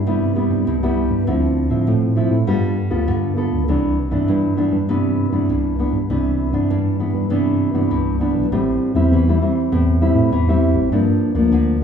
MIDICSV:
0, 0, Header, 1, 3, 480
1, 0, Start_track
1, 0, Key_signature, 0, "major"
1, 0, Tempo, 603015
1, 1015, Time_signature, 4, 2, 24, 8
1, 9422, End_track
2, 0, Start_track
2, 0, Title_t, "Nylon-string guitar"
2, 0, Program_c, 0, 24
2, 53, Note_on_c, 0, 48, 51
2, 53, Note_on_c, 0, 55, 60
2, 56, Note_on_c, 0, 59, 57
2, 61, Note_on_c, 0, 64, 60
2, 254, Note_off_c, 0, 55, 0
2, 257, Note_off_c, 0, 59, 0
2, 258, Note_off_c, 0, 64, 0
2, 282, Note_on_c, 0, 55, 54
2, 285, Note_on_c, 0, 59, 65
2, 290, Note_on_c, 0, 64, 64
2, 510, Note_off_c, 0, 48, 0
2, 535, Note_on_c, 0, 43, 57
2, 610, Note_off_c, 0, 55, 0
2, 612, Note_off_c, 0, 59, 0
2, 613, Note_off_c, 0, 64, 0
2, 660, Note_on_c, 0, 55, 67
2, 664, Note_on_c, 0, 59, 62
2, 667, Note_on_c, 0, 64, 68
2, 979, Note_off_c, 0, 55, 0
2, 982, Note_off_c, 0, 59, 0
2, 982, Note_off_c, 0, 64, 0
2, 991, Note_off_c, 0, 43, 0
2, 1012, Note_on_c, 0, 50, 57
2, 1015, Note_on_c, 0, 53, 52
2, 1018, Note_on_c, 0, 60, 53
2, 1021, Note_on_c, 0, 64, 60
2, 1337, Note_off_c, 0, 53, 0
2, 1338, Note_off_c, 0, 60, 0
2, 1340, Note_off_c, 0, 64, 0
2, 1354, Note_on_c, 0, 53, 54
2, 1358, Note_on_c, 0, 60, 56
2, 1362, Note_on_c, 0, 64, 58
2, 1471, Note_off_c, 0, 50, 0
2, 1489, Note_on_c, 0, 45, 56
2, 1687, Note_off_c, 0, 53, 0
2, 1689, Note_off_c, 0, 60, 0
2, 1690, Note_off_c, 0, 64, 0
2, 1719, Note_on_c, 0, 53, 57
2, 1726, Note_on_c, 0, 64, 58
2, 1727, Note_on_c, 0, 60, 51
2, 1870, Note_off_c, 0, 53, 0
2, 1872, Note_off_c, 0, 60, 0
2, 1873, Note_off_c, 0, 64, 0
2, 1949, Note_off_c, 0, 45, 0
2, 1968, Note_on_c, 0, 55, 59
2, 1970, Note_on_c, 0, 59, 53
2, 1973, Note_on_c, 0, 65, 55
2, 1976, Note_on_c, 0, 69, 56
2, 2198, Note_off_c, 0, 59, 0
2, 2200, Note_off_c, 0, 65, 0
2, 2201, Note_off_c, 0, 69, 0
2, 2310, Note_on_c, 0, 59, 52
2, 2315, Note_on_c, 0, 65, 57
2, 2318, Note_on_c, 0, 69, 64
2, 2429, Note_off_c, 0, 55, 0
2, 2449, Note_on_c, 0, 50, 56
2, 2646, Note_off_c, 0, 59, 0
2, 2647, Note_off_c, 0, 65, 0
2, 2650, Note_off_c, 0, 69, 0
2, 2680, Note_on_c, 0, 59, 56
2, 2684, Note_on_c, 0, 65, 45
2, 2689, Note_on_c, 0, 69, 57
2, 2891, Note_off_c, 0, 59, 0
2, 2893, Note_off_c, 0, 65, 0
2, 2895, Note_off_c, 0, 69, 0
2, 2910, Note_off_c, 0, 50, 0
2, 2931, Note_on_c, 0, 48, 55
2, 2932, Note_on_c, 0, 52, 50
2, 2936, Note_on_c, 0, 59, 53
2, 2940, Note_on_c, 0, 62, 57
2, 3160, Note_off_c, 0, 52, 0
2, 3162, Note_off_c, 0, 59, 0
2, 3165, Note_off_c, 0, 62, 0
2, 3273, Note_on_c, 0, 52, 57
2, 3276, Note_on_c, 0, 59, 53
2, 3282, Note_on_c, 0, 62, 62
2, 3392, Note_off_c, 0, 48, 0
2, 3407, Note_on_c, 0, 43, 54
2, 3608, Note_off_c, 0, 52, 0
2, 3610, Note_off_c, 0, 59, 0
2, 3611, Note_off_c, 0, 62, 0
2, 3636, Note_on_c, 0, 52, 55
2, 3641, Note_on_c, 0, 59, 54
2, 3646, Note_on_c, 0, 62, 69
2, 3790, Note_off_c, 0, 52, 0
2, 3791, Note_off_c, 0, 59, 0
2, 3792, Note_off_c, 0, 62, 0
2, 3869, Note_off_c, 0, 43, 0
2, 3891, Note_on_c, 0, 48, 50
2, 3895, Note_on_c, 0, 52, 56
2, 3897, Note_on_c, 0, 59, 58
2, 3901, Note_on_c, 0, 62, 64
2, 4219, Note_off_c, 0, 52, 0
2, 4220, Note_off_c, 0, 59, 0
2, 4221, Note_off_c, 0, 62, 0
2, 4237, Note_on_c, 0, 52, 54
2, 4239, Note_on_c, 0, 59, 52
2, 4244, Note_on_c, 0, 62, 57
2, 4352, Note_off_c, 0, 48, 0
2, 4374, Note_on_c, 0, 43, 56
2, 4570, Note_off_c, 0, 52, 0
2, 4572, Note_off_c, 0, 59, 0
2, 4573, Note_off_c, 0, 62, 0
2, 4608, Note_on_c, 0, 52, 50
2, 4612, Note_on_c, 0, 59, 49
2, 4615, Note_on_c, 0, 62, 61
2, 4755, Note_off_c, 0, 52, 0
2, 4756, Note_off_c, 0, 59, 0
2, 4759, Note_off_c, 0, 62, 0
2, 4833, Note_off_c, 0, 43, 0
2, 4855, Note_on_c, 0, 48, 49
2, 4858, Note_on_c, 0, 52, 50
2, 4862, Note_on_c, 0, 62, 57
2, 4864, Note_on_c, 0, 59, 51
2, 5180, Note_off_c, 0, 52, 0
2, 5181, Note_off_c, 0, 59, 0
2, 5182, Note_off_c, 0, 62, 0
2, 5197, Note_on_c, 0, 52, 51
2, 5200, Note_on_c, 0, 59, 50
2, 5205, Note_on_c, 0, 62, 67
2, 5314, Note_off_c, 0, 48, 0
2, 5337, Note_on_c, 0, 43, 55
2, 5530, Note_off_c, 0, 52, 0
2, 5532, Note_off_c, 0, 59, 0
2, 5533, Note_off_c, 0, 62, 0
2, 5567, Note_on_c, 0, 52, 48
2, 5572, Note_on_c, 0, 59, 47
2, 5577, Note_on_c, 0, 62, 54
2, 5775, Note_off_c, 0, 52, 0
2, 5778, Note_off_c, 0, 59, 0
2, 5779, Note_off_c, 0, 62, 0
2, 5794, Note_off_c, 0, 43, 0
2, 5812, Note_on_c, 0, 48, 55
2, 5814, Note_on_c, 0, 52, 61
2, 5816, Note_on_c, 0, 59, 63
2, 5821, Note_on_c, 0, 62, 59
2, 6137, Note_off_c, 0, 52, 0
2, 6140, Note_off_c, 0, 59, 0
2, 6141, Note_off_c, 0, 62, 0
2, 6163, Note_on_c, 0, 52, 56
2, 6167, Note_on_c, 0, 59, 50
2, 6168, Note_on_c, 0, 62, 58
2, 6271, Note_off_c, 0, 48, 0
2, 6295, Note_on_c, 0, 43, 56
2, 6492, Note_off_c, 0, 52, 0
2, 6493, Note_off_c, 0, 59, 0
2, 6495, Note_off_c, 0, 62, 0
2, 6527, Note_on_c, 0, 52, 55
2, 6531, Note_on_c, 0, 59, 50
2, 6535, Note_on_c, 0, 62, 64
2, 6734, Note_off_c, 0, 52, 0
2, 6736, Note_off_c, 0, 59, 0
2, 6738, Note_off_c, 0, 62, 0
2, 6752, Note_off_c, 0, 43, 0
2, 6782, Note_on_c, 0, 45, 55
2, 6783, Note_on_c, 0, 55, 57
2, 6787, Note_on_c, 0, 60, 59
2, 6791, Note_on_c, 0, 64, 51
2, 7101, Note_off_c, 0, 55, 0
2, 7103, Note_off_c, 0, 60, 0
2, 7105, Note_off_c, 0, 64, 0
2, 7126, Note_on_c, 0, 55, 64
2, 7130, Note_on_c, 0, 60, 65
2, 7132, Note_on_c, 0, 64, 65
2, 7235, Note_off_c, 0, 45, 0
2, 7266, Note_on_c, 0, 52, 56
2, 7333, Note_off_c, 0, 55, 0
2, 7334, Note_off_c, 0, 60, 0
2, 7336, Note_off_c, 0, 64, 0
2, 7392, Note_on_c, 0, 55, 64
2, 7396, Note_on_c, 0, 60, 53
2, 7397, Note_on_c, 0, 64, 64
2, 7466, Note_off_c, 0, 55, 0
2, 7467, Note_off_c, 0, 60, 0
2, 7468, Note_off_c, 0, 64, 0
2, 7495, Note_on_c, 0, 55, 60
2, 7499, Note_on_c, 0, 60, 57
2, 7503, Note_on_c, 0, 64, 59
2, 7717, Note_off_c, 0, 52, 0
2, 7739, Note_on_c, 0, 45, 58
2, 7936, Note_off_c, 0, 55, 0
2, 7938, Note_off_c, 0, 60, 0
2, 7939, Note_off_c, 0, 64, 0
2, 7969, Note_on_c, 0, 55, 57
2, 7974, Note_on_c, 0, 60, 63
2, 7976, Note_on_c, 0, 64, 71
2, 8192, Note_off_c, 0, 45, 0
2, 8197, Note_off_c, 0, 55, 0
2, 8198, Note_off_c, 0, 60, 0
2, 8200, Note_off_c, 0, 64, 0
2, 8217, Note_on_c, 0, 52, 55
2, 8344, Note_on_c, 0, 55, 62
2, 8347, Note_on_c, 0, 60, 59
2, 8351, Note_on_c, 0, 64, 81
2, 8659, Note_off_c, 0, 55, 0
2, 8660, Note_off_c, 0, 60, 0
2, 8663, Note_off_c, 0, 64, 0
2, 8670, Note_off_c, 0, 52, 0
2, 8693, Note_on_c, 0, 43, 57
2, 8694, Note_on_c, 0, 53, 56
2, 8697, Note_on_c, 0, 58, 58
2, 8699, Note_on_c, 0, 62, 61
2, 9013, Note_off_c, 0, 53, 0
2, 9014, Note_off_c, 0, 58, 0
2, 9016, Note_off_c, 0, 62, 0
2, 9033, Note_on_c, 0, 53, 69
2, 9037, Note_on_c, 0, 58, 63
2, 9039, Note_on_c, 0, 62, 62
2, 9147, Note_off_c, 0, 43, 0
2, 9171, Note_on_c, 0, 50, 57
2, 9362, Note_off_c, 0, 53, 0
2, 9363, Note_off_c, 0, 58, 0
2, 9365, Note_off_c, 0, 62, 0
2, 9422, Note_off_c, 0, 50, 0
2, 9422, End_track
3, 0, Start_track
3, 0, Title_t, "Tine electric piano"
3, 0, Program_c, 1, 4
3, 0, Note_on_c, 1, 43, 89
3, 333, Note_off_c, 1, 43, 0
3, 399, Note_on_c, 1, 43, 79
3, 507, Note_off_c, 1, 43, 0
3, 535, Note_on_c, 1, 36, 82
3, 841, Note_off_c, 1, 36, 0
3, 878, Note_on_c, 1, 43, 77
3, 1007, Note_off_c, 1, 43, 0
3, 1015, Note_on_c, 1, 38, 79
3, 1322, Note_off_c, 1, 38, 0
3, 1358, Note_on_c, 1, 45, 64
3, 1468, Note_off_c, 1, 45, 0
3, 1495, Note_on_c, 1, 45, 80
3, 1802, Note_off_c, 1, 45, 0
3, 1838, Note_on_c, 1, 45, 78
3, 1948, Note_off_c, 1, 45, 0
3, 1974, Note_on_c, 1, 43, 95
3, 2282, Note_off_c, 1, 43, 0
3, 2321, Note_on_c, 1, 38, 77
3, 2430, Note_off_c, 1, 38, 0
3, 2458, Note_on_c, 1, 43, 76
3, 2764, Note_off_c, 1, 43, 0
3, 2803, Note_on_c, 1, 37, 69
3, 2931, Note_off_c, 1, 37, 0
3, 2939, Note_on_c, 1, 36, 89
3, 3245, Note_off_c, 1, 36, 0
3, 3280, Note_on_c, 1, 43, 75
3, 3390, Note_off_c, 1, 43, 0
3, 3416, Note_on_c, 1, 43, 87
3, 3724, Note_off_c, 1, 43, 0
3, 3760, Note_on_c, 1, 43, 85
3, 4176, Note_off_c, 1, 43, 0
3, 4240, Note_on_c, 1, 43, 76
3, 4350, Note_off_c, 1, 43, 0
3, 4375, Note_on_c, 1, 36, 76
3, 4683, Note_off_c, 1, 36, 0
3, 4720, Note_on_c, 1, 43, 74
3, 4850, Note_off_c, 1, 43, 0
3, 4858, Note_on_c, 1, 36, 84
3, 5165, Note_off_c, 1, 36, 0
3, 5199, Note_on_c, 1, 43, 72
3, 5310, Note_off_c, 1, 43, 0
3, 5338, Note_on_c, 1, 43, 75
3, 5645, Note_off_c, 1, 43, 0
3, 5684, Note_on_c, 1, 43, 84
3, 6098, Note_off_c, 1, 43, 0
3, 6159, Note_on_c, 1, 43, 72
3, 6270, Note_off_c, 1, 43, 0
3, 6301, Note_on_c, 1, 36, 74
3, 6606, Note_off_c, 1, 36, 0
3, 6642, Note_on_c, 1, 35, 82
3, 6751, Note_off_c, 1, 35, 0
3, 6780, Note_on_c, 1, 33, 80
3, 6983, Note_off_c, 1, 33, 0
3, 7122, Note_on_c, 1, 40, 82
3, 7230, Note_off_c, 1, 40, 0
3, 7256, Note_on_c, 1, 40, 91
3, 7460, Note_off_c, 1, 40, 0
3, 7738, Note_on_c, 1, 40, 95
3, 8042, Note_off_c, 1, 40, 0
3, 8079, Note_on_c, 1, 45, 89
3, 8188, Note_off_c, 1, 45, 0
3, 8216, Note_on_c, 1, 40, 91
3, 8520, Note_off_c, 1, 40, 0
3, 8555, Note_on_c, 1, 33, 84
3, 8664, Note_off_c, 1, 33, 0
3, 8693, Note_on_c, 1, 43, 92
3, 8896, Note_off_c, 1, 43, 0
3, 9033, Note_on_c, 1, 38, 82
3, 9142, Note_off_c, 1, 38, 0
3, 9168, Note_on_c, 1, 38, 78
3, 9372, Note_off_c, 1, 38, 0
3, 9422, End_track
0, 0, End_of_file